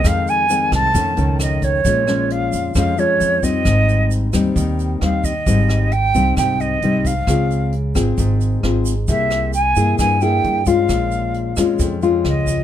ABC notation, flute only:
X:1
M:4/4
L:1/8
Q:1/4=133
K:Fphr
V:1 name="Flute"
f a2 =a3 e ^c- | [K:Bbdor] ^c2 f2 f d2 e- | e2 z4 f e- | e2 g2 g e2 f- |
f2 z6 | =e2 a2 a g2 f- | f3 z3 e2 |]